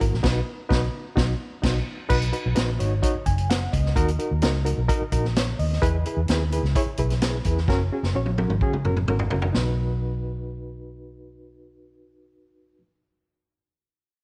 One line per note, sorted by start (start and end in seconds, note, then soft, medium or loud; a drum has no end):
0.00 0.11 G#1 medium
0.00 0.14 E4 medium
0.00 0.14 F#4 medium
0.00 0.14 A#4 medium
0.00 kick medium
0.00 closed hi-hat medium
0.13 0.23 A#1 medium
0.13 snare soft
0.23 0.40 B1 loud
0.23 0.39 D#4 loud
0.23 0.39 F#4 medium
0.23 0.40 B4 loud
0.23 kick loud
0.23 snare loud
0.23 crash medium
0.69 0.86 B1 loud
0.69 0.86 D#4 loud
0.69 0.86 F#4 loud
0.69 0.86 B4 loud
0.69 kick loud
0.69 snare loud
1.15 1.33 B1 loud
1.15 1.32 D#4 medium
1.15 1.32 F#4 medium
1.15 kick loud
1.15 snare loud
1.62 1.79 B1 loud
1.62 1.79 D#4 medium
1.62 1.79 F#4 medium
1.62 kick loud
1.62 snare loud
1.62 crash medium
2.09 2.30 B1 loud
2.09 2.23 D#4 loud
2.09 2.23 F#4 loud
2.09 2.23 B4 loud
2.09 kick loud
2.09 crash medium
2.22 closed hi-hat medium
2.33 2.46 D#4 medium
2.33 2.47 F#4 medium
2.33 2.47 B4 medium
2.33 closed hi-hat medium
2.46 2.55 B1 loud
2.55 2.77 A#1 medium
2.55 2.69 D#4 medium
2.55 2.69 F#4 medium
2.55 2.70 B4 loud
2.55 snare loud
2.55 closed hi-hat medium
2.79 3.00 G#1 medium
2.79 2.93 D#4 medium
2.79 2.93 F#4 medium
2.79 2.93 C#5 medium
2.79 closed hi-hat medium
3.03 3.16 D#4 loud
3.03 3.16 F#4 medium
3.03 3.16 C#5 loud
3.03 kick medium
3.03 closed hi-hat medium
3.15 muted fingered electric bass stroke soft
3.26 3.66 F#1 medium
3.26 3.48 G#5 medium
3.26 kick medium
3.26 closed hi-hat medium
3.38 closed hi-hat soft
3.50 3.72 F#5 medium
3.50 snare loud
3.50 closed hi-hat loud
3.73 3.93 C#2 medium
3.73 4.17 D#5 medium
3.73 kick medium
3.73 closed hi-hat medium
3.86 snare soft
3.96 4.16 D#2 medium
3.96 4.09 D#4 loud
3.96 4.10 F#4 loud
3.96 4.09 A#4 loud
3.96 kick loud
3.96 closed hi-hat medium
4.08 closed hi-hat medium
4.18 4.32 D#4 medium
4.18 4.33 F#4 medium
4.18 4.33 A#4 medium
4.18 closed hi-hat medium
4.31 4.41 D#2 medium
4.42 4.73 C#2 medium
4.42 4.56 D#4 loud
4.42 4.56 F#4 medium
4.42 4.56 A#4 loud
4.42 snare loud
4.42 closed hi-hat medium
4.65 4.79 D#4 medium
4.65 4.79 F#4 medium
4.65 4.79 A#4 medium
4.65 closed hi-hat medium
4.78 4.88 B1 medium
4.88 5.02 D#4 loud
4.88 5.02 F#4 medium
4.88 5.02 A#4 loud
4.88 kick loud
4.88 closed hi-hat medium
5.02 muted fingered electric bass stroke soft
5.12 5.52 A#1 medium
5.12 5.26 D#4 medium
5.12 5.26 F#4 medium
5.12 5.26 A#4 loud
5.12 kick medium
5.12 closed hi-hat medium
5.25 snare soft
5.36 5.58 C#5 medium
5.36 snare loud
5.36 closed hi-hat loud
5.59 5.79 D#2 medium
5.59 6.03 D#5 medium
5.59 open hi-hat medium
5.73 snare soft
5.82 6.03 E2 medium
5.82 5.95 E4 loud
5.82 5.95 G#4 loud
5.82 5.95 B4 loud
5.82 kick loud
5.82 closed hi-hat medium
6.05 6.19 E4 medium
6.05 6.19 G#4 medium
6.05 6.20 B4 medium
6.05 closed hi-hat medium
6.17 6.27 E2 medium
6.28 6.59 D#2 medium
6.28 6.42 E4 medium
6.28 6.42 G#4 medium
6.28 6.43 B4 loud
6.28 snare loud
6.28 closed hi-hat medium
6.52 6.66 E4 medium
6.52 6.66 G#4 medium
6.52 6.66 B4 medium
6.52 closed hi-hat medium
6.63 6.73 C#2 medium
6.63 snare soft
6.75 6.89 E4 loud
6.75 6.89 G#4 medium
6.75 6.89 C#5 loud
6.75 kick loud
6.75 closed hi-hat medium
6.86 muted fingered electric bass stroke soft
6.97 7.38 B1 medium
6.97 7.12 E4 medium
6.97 7.12 G#4 medium
6.97 7.12 B4 medium
6.97 kick medium
6.97 closed hi-hat medium
7.10 snare soft
7.10 closed hi-hat medium
7.22 7.36 E4 medium
7.22 7.36 G#4 medium
7.22 7.36 B4 medium
7.22 snare loud
7.22 closed hi-hat medium
7.44 7.65 E2 medium
7.44 7.59 E4 medium
7.44 7.59 G#4 medium
7.44 7.59 B4 medium
7.44 kick medium
7.44 closed hi-hat medium
7.58 snare soft
7.68 7.88 F#1 loud
7.68 7.82 C#4 loud
7.68 7.82 F#4 medium
7.68 7.82 A#4 loud
7.68 kick loud
7.68 snare medium
7.92 8.05 C#4 medium
7.92 8.06 F#4 medium
7.92 8.06 G#4 medium
8.03 8.13 F#1 loud
8.03 snare medium
8.15 8.45 A#1 medium
8.15 8.28 C#4 medium
8.15 8.29 F#4 medium
8.15 8.29 C#5 medium
8.26 high tom medium
8.38 8.52 C#4 medium
8.38 8.52 F#4 medium
8.38 8.52 A#4 medium
8.38 high tom medium
8.49 8.60 G#1 medium
8.49 mid tom medium
8.61 8.75 C#4 medium
8.61 8.75 F#4 medium
8.61 8.75 G#4 loud
8.61 kick loud
8.73 muted fingered electric bass stroke soft
8.73 mid tom medium
8.84 9.05 F#1 medium
8.84 8.98 C#4 medium
8.84 8.98 F#4 medium
8.84 8.98 A#4 medium
8.84 mid tom medium
8.97 mid tom medium
9.08 9.28 G#1 medium
9.08 9.22 C#4 medium
9.08 9.22 F#4 medium
9.08 9.22 A#4 medium
9.08 mid tom medium
9.19 floor tom medium
9.30 9.51 F#1 medium
9.30 9.45 C#4 medium
9.30 9.45 F#4 medium
9.30 9.45 A#4 medium
9.30 floor tom medium
9.42 floor tom medium
9.53 12.79 B1 medium
9.53 12.77 D#4 medium
9.53 12.80 F#4 medium
9.53 snare medium
9.57 12.81 B4 medium